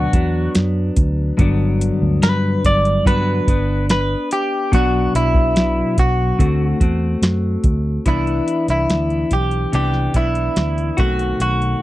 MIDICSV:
0, 0, Header, 1, 5, 480
1, 0, Start_track
1, 0, Tempo, 834492
1, 798, Time_signature, 4, 2, 24, 8
1, 6799, End_track
2, 0, Start_track
2, 0, Title_t, "Clean electric guitar"
2, 0, Program_c, 0, 27
2, 0, Note_on_c, 0, 66, 70
2, 300, Note_off_c, 0, 66, 0
2, 1284, Note_on_c, 0, 71, 106
2, 1527, Note_off_c, 0, 71, 0
2, 1529, Note_on_c, 0, 74, 97
2, 1765, Note_off_c, 0, 74, 0
2, 1767, Note_on_c, 0, 71, 105
2, 2219, Note_off_c, 0, 71, 0
2, 2249, Note_on_c, 0, 71, 93
2, 2467, Note_off_c, 0, 71, 0
2, 2488, Note_on_c, 0, 67, 100
2, 2727, Note_off_c, 0, 67, 0
2, 2729, Note_on_c, 0, 66, 94
2, 2947, Note_off_c, 0, 66, 0
2, 2967, Note_on_c, 0, 64, 87
2, 3446, Note_off_c, 0, 64, 0
2, 3448, Note_on_c, 0, 66, 67
2, 3900, Note_off_c, 0, 66, 0
2, 4647, Note_on_c, 0, 64, 79
2, 4980, Note_off_c, 0, 64, 0
2, 5006, Note_on_c, 0, 64, 75
2, 5367, Note_on_c, 0, 67, 71
2, 5373, Note_off_c, 0, 64, 0
2, 5601, Note_off_c, 0, 67, 0
2, 5608, Note_on_c, 0, 67, 80
2, 5847, Note_on_c, 0, 64, 84
2, 5850, Note_off_c, 0, 67, 0
2, 6325, Note_on_c, 0, 66, 77
2, 6337, Note_off_c, 0, 64, 0
2, 6560, Note_off_c, 0, 66, 0
2, 6567, Note_on_c, 0, 66, 97
2, 6799, Note_off_c, 0, 66, 0
2, 6799, End_track
3, 0, Start_track
3, 0, Title_t, "Clean electric guitar"
3, 0, Program_c, 1, 27
3, 0, Note_on_c, 1, 47, 54
3, 0, Note_on_c, 1, 54, 59
3, 0, Note_on_c, 1, 59, 60
3, 0, Note_on_c, 1, 62, 68
3, 71, Note_off_c, 1, 62, 0
3, 77, Note_off_c, 1, 47, 0
3, 77, Note_off_c, 1, 59, 0
3, 77, Note_on_c, 1, 62, 49
3, 80, Note_off_c, 1, 54, 0
3, 84, Note_on_c, 1, 59, 47
3, 89, Note_on_c, 1, 54, 47
3, 791, Note_on_c, 1, 43, 98
3, 797, Note_on_c, 1, 50, 100
3, 800, Note_off_c, 1, 54, 0
3, 802, Note_on_c, 1, 54, 110
3, 803, Note_off_c, 1, 59, 0
3, 806, Note_on_c, 1, 59, 108
3, 808, Note_off_c, 1, 62, 0
3, 810, Note_on_c, 1, 62, 102
3, 1753, Note_off_c, 1, 50, 0
3, 1754, Note_off_c, 1, 43, 0
3, 1756, Note_on_c, 1, 50, 52
3, 1758, Note_off_c, 1, 54, 0
3, 1760, Note_on_c, 1, 54, 63
3, 1762, Note_off_c, 1, 59, 0
3, 1765, Note_on_c, 1, 59, 57
3, 1766, Note_off_c, 1, 62, 0
3, 1768, Note_on_c, 1, 62, 69
3, 1992, Note_off_c, 1, 62, 0
3, 1997, Note_off_c, 1, 50, 0
3, 1997, Note_off_c, 1, 59, 0
3, 1999, Note_off_c, 1, 54, 0
3, 1999, Note_on_c, 1, 62, 44
3, 2004, Note_on_c, 1, 59, 41
3, 2715, Note_on_c, 1, 47, 84
3, 2720, Note_off_c, 1, 59, 0
3, 2723, Note_on_c, 1, 54, 87
3, 2727, Note_on_c, 1, 59, 84
3, 2731, Note_off_c, 1, 62, 0
3, 2733, Note_on_c, 1, 62, 94
3, 3672, Note_off_c, 1, 47, 0
3, 3674, Note_on_c, 1, 50, 63
3, 3677, Note_off_c, 1, 54, 0
3, 3678, Note_off_c, 1, 59, 0
3, 3679, Note_on_c, 1, 57, 65
3, 3680, Note_on_c, 1, 60, 62
3, 3684, Note_off_c, 1, 62, 0
3, 3687, Note_on_c, 1, 66, 59
3, 3907, Note_off_c, 1, 66, 0
3, 3914, Note_off_c, 1, 60, 0
3, 3914, Note_on_c, 1, 66, 46
3, 3916, Note_off_c, 1, 50, 0
3, 3918, Note_off_c, 1, 57, 0
3, 3921, Note_on_c, 1, 60, 46
3, 3926, Note_on_c, 1, 57, 45
3, 4632, Note_off_c, 1, 57, 0
3, 4635, Note_on_c, 1, 52, 78
3, 4636, Note_off_c, 1, 66, 0
3, 4638, Note_off_c, 1, 60, 0
3, 4640, Note_on_c, 1, 59, 77
3, 4646, Note_on_c, 1, 62, 96
3, 5593, Note_off_c, 1, 52, 0
3, 5594, Note_on_c, 1, 48, 53
3, 5600, Note_on_c, 1, 52, 53
3, 5601, Note_off_c, 1, 59, 0
3, 5601, Note_off_c, 1, 62, 0
3, 5603, Note_on_c, 1, 59, 56
3, 5608, Note_on_c, 1, 62, 64
3, 5826, Note_off_c, 1, 62, 0
3, 5833, Note_on_c, 1, 62, 44
3, 5834, Note_off_c, 1, 59, 0
3, 5836, Note_off_c, 1, 48, 0
3, 5839, Note_off_c, 1, 52, 0
3, 5841, Note_on_c, 1, 59, 45
3, 5846, Note_on_c, 1, 52, 39
3, 6311, Note_on_c, 1, 66, 68
3, 6316, Note_off_c, 1, 62, 0
3, 6318, Note_on_c, 1, 60, 63
3, 6319, Note_off_c, 1, 59, 0
3, 6321, Note_on_c, 1, 57, 62
3, 6322, Note_off_c, 1, 52, 0
3, 6326, Note_on_c, 1, 51, 53
3, 6331, Note_on_c, 1, 47, 53
3, 6799, Note_off_c, 1, 47, 0
3, 6799, Note_off_c, 1, 51, 0
3, 6799, Note_off_c, 1, 57, 0
3, 6799, Note_off_c, 1, 60, 0
3, 6799, Note_off_c, 1, 66, 0
3, 6799, End_track
4, 0, Start_track
4, 0, Title_t, "Fingered electric bass"
4, 0, Program_c, 2, 33
4, 76, Note_on_c, 2, 40, 95
4, 269, Note_off_c, 2, 40, 0
4, 322, Note_on_c, 2, 42, 83
4, 513, Note_off_c, 2, 42, 0
4, 559, Note_on_c, 2, 38, 98
4, 751, Note_off_c, 2, 38, 0
4, 801, Note_on_c, 2, 31, 113
4, 1088, Note_off_c, 2, 31, 0
4, 1161, Note_on_c, 2, 38, 82
4, 1256, Note_off_c, 2, 38, 0
4, 1281, Note_on_c, 2, 43, 98
4, 1472, Note_off_c, 2, 43, 0
4, 1523, Note_on_c, 2, 31, 96
4, 1713, Note_off_c, 2, 31, 0
4, 1761, Note_on_c, 2, 43, 95
4, 1952, Note_off_c, 2, 43, 0
4, 2000, Note_on_c, 2, 31, 102
4, 2383, Note_off_c, 2, 31, 0
4, 2721, Note_on_c, 2, 35, 102
4, 2912, Note_off_c, 2, 35, 0
4, 2961, Note_on_c, 2, 35, 100
4, 3344, Note_off_c, 2, 35, 0
4, 3439, Note_on_c, 2, 35, 92
4, 3630, Note_off_c, 2, 35, 0
4, 3678, Note_on_c, 2, 38, 88
4, 3870, Note_off_c, 2, 38, 0
4, 3916, Note_on_c, 2, 40, 94
4, 4109, Note_off_c, 2, 40, 0
4, 4153, Note_on_c, 2, 42, 85
4, 4347, Note_off_c, 2, 42, 0
4, 4395, Note_on_c, 2, 38, 96
4, 4588, Note_off_c, 2, 38, 0
4, 4636, Note_on_c, 2, 36, 90
4, 4829, Note_off_c, 2, 36, 0
4, 4996, Note_on_c, 2, 36, 83
4, 5092, Note_off_c, 2, 36, 0
4, 5116, Note_on_c, 2, 38, 89
4, 5309, Note_off_c, 2, 38, 0
4, 5358, Note_on_c, 2, 35, 73
4, 5550, Note_off_c, 2, 35, 0
4, 5598, Note_on_c, 2, 36, 74
4, 5790, Note_off_c, 2, 36, 0
4, 5836, Note_on_c, 2, 35, 77
4, 6029, Note_off_c, 2, 35, 0
4, 6078, Note_on_c, 2, 38, 80
4, 6270, Note_off_c, 2, 38, 0
4, 6319, Note_on_c, 2, 35, 98
4, 6511, Note_off_c, 2, 35, 0
4, 6556, Note_on_c, 2, 35, 89
4, 6749, Note_off_c, 2, 35, 0
4, 6799, End_track
5, 0, Start_track
5, 0, Title_t, "Drums"
5, 76, Note_on_c, 9, 42, 84
5, 77, Note_on_c, 9, 36, 95
5, 134, Note_off_c, 9, 36, 0
5, 134, Note_off_c, 9, 42, 0
5, 315, Note_on_c, 9, 42, 88
5, 319, Note_on_c, 9, 38, 113
5, 372, Note_off_c, 9, 42, 0
5, 376, Note_off_c, 9, 38, 0
5, 555, Note_on_c, 9, 42, 80
5, 557, Note_on_c, 9, 36, 98
5, 613, Note_off_c, 9, 42, 0
5, 615, Note_off_c, 9, 36, 0
5, 798, Note_on_c, 9, 42, 82
5, 799, Note_on_c, 9, 36, 113
5, 856, Note_off_c, 9, 42, 0
5, 857, Note_off_c, 9, 36, 0
5, 1043, Note_on_c, 9, 42, 80
5, 1100, Note_off_c, 9, 42, 0
5, 1281, Note_on_c, 9, 42, 94
5, 1285, Note_on_c, 9, 38, 113
5, 1338, Note_off_c, 9, 42, 0
5, 1343, Note_off_c, 9, 38, 0
5, 1521, Note_on_c, 9, 36, 86
5, 1522, Note_on_c, 9, 42, 80
5, 1579, Note_off_c, 9, 36, 0
5, 1579, Note_off_c, 9, 42, 0
5, 1641, Note_on_c, 9, 42, 49
5, 1699, Note_off_c, 9, 42, 0
5, 1760, Note_on_c, 9, 36, 92
5, 1767, Note_on_c, 9, 42, 77
5, 1817, Note_off_c, 9, 36, 0
5, 1825, Note_off_c, 9, 42, 0
5, 1999, Note_on_c, 9, 36, 91
5, 2002, Note_on_c, 9, 42, 79
5, 2057, Note_off_c, 9, 36, 0
5, 2059, Note_off_c, 9, 42, 0
5, 2240, Note_on_c, 9, 42, 88
5, 2244, Note_on_c, 9, 38, 97
5, 2298, Note_off_c, 9, 42, 0
5, 2302, Note_off_c, 9, 38, 0
5, 2480, Note_on_c, 9, 42, 82
5, 2537, Note_off_c, 9, 42, 0
5, 2719, Note_on_c, 9, 36, 108
5, 2721, Note_on_c, 9, 42, 86
5, 2777, Note_off_c, 9, 36, 0
5, 2778, Note_off_c, 9, 42, 0
5, 2963, Note_on_c, 9, 42, 82
5, 3021, Note_off_c, 9, 42, 0
5, 3074, Note_on_c, 9, 36, 99
5, 3132, Note_off_c, 9, 36, 0
5, 3198, Note_on_c, 9, 42, 83
5, 3203, Note_on_c, 9, 38, 117
5, 3256, Note_off_c, 9, 42, 0
5, 3260, Note_off_c, 9, 38, 0
5, 3438, Note_on_c, 9, 42, 90
5, 3439, Note_on_c, 9, 36, 87
5, 3496, Note_off_c, 9, 42, 0
5, 3497, Note_off_c, 9, 36, 0
5, 3677, Note_on_c, 9, 36, 91
5, 3682, Note_on_c, 9, 42, 91
5, 3734, Note_off_c, 9, 36, 0
5, 3739, Note_off_c, 9, 42, 0
5, 3916, Note_on_c, 9, 36, 93
5, 3917, Note_on_c, 9, 42, 78
5, 3973, Note_off_c, 9, 36, 0
5, 3975, Note_off_c, 9, 42, 0
5, 4156, Note_on_c, 9, 42, 84
5, 4160, Note_on_c, 9, 38, 109
5, 4214, Note_off_c, 9, 42, 0
5, 4218, Note_off_c, 9, 38, 0
5, 4393, Note_on_c, 9, 42, 76
5, 4395, Note_on_c, 9, 36, 103
5, 4450, Note_off_c, 9, 42, 0
5, 4452, Note_off_c, 9, 36, 0
5, 4634, Note_on_c, 9, 42, 81
5, 4636, Note_on_c, 9, 36, 84
5, 4692, Note_off_c, 9, 42, 0
5, 4693, Note_off_c, 9, 36, 0
5, 4758, Note_on_c, 9, 42, 35
5, 4816, Note_off_c, 9, 42, 0
5, 4876, Note_on_c, 9, 42, 71
5, 4933, Note_off_c, 9, 42, 0
5, 4995, Note_on_c, 9, 42, 49
5, 5052, Note_off_c, 9, 42, 0
5, 5117, Note_on_c, 9, 42, 80
5, 5122, Note_on_c, 9, 38, 102
5, 5175, Note_off_c, 9, 42, 0
5, 5179, Note_off_c, 9, 38, 0
5, 5236, Note_on_c, 9, 42, 31
5, 5294, Note_off_c, 9, 42, 0
5, 5354, Note_on_c, 9, 42, 74
5, 5356, Note_on_c, 9, 36, 67
5, 5411, Note_off_c, 9, 42, 0
5, 5414, Note_off_c, 9, 36, 0
5, 5472, Note_on_c, 9, 42, 42
5, 5530, Note_off_c, 9, 42, 0
5, 5597, Note_on_c, 9, 42, 79
5, 5655, Note_off_c, 9, 42, 0
5, 5715, Note_on_c, 9, 38, 31
5, 5772, Note_off_c, 9, 38, 0
5, 5834, Note_on_c, 9, 42, 71
5, 5835, Note_on_c, 9, 36, 76
5, 5891, Note_off_c, 9, 42, 0
5, 5892, Note_off_c, 9, 36, 0
5, 5955, Note_on_c, 9, 42, 41
5, 6012, Note_off_c, 9, 42, 0
5, 6076, Note_on_c, 9, 42, 70
5, 6079, Note_on_c, 9, 38, 98
5, 6133, Note_off_c, 9, 42, 0
5, 6137, Note_off_c, 9, 38, 0
5, 6200, Note_on_c, 9, 42, 32
5, 6258, Note_off_c, 9, 42, 0
5, 6314, Note_on_c, 9, 42, 66
5, 6318, Note_on_c, 9, 36, 107
5, 6372, Note_off_c, 9, 42, 0
5, 6376, Note_off_c, 9, 36, 0
5, 6438, Note_on_c, 9, 42, 45
5, 6496, Note_off_c, 9, 42, 0
5, 6558, Note_on_c, 9, 42, 79
5, 6616, Note_off_c, 9, 42, 0
5, 6682, Note_on_c, 9, 42, 35
5, 6740, Note_off_c, 9, 42, 0
5, 6799, End_track
0, 0, End_of_file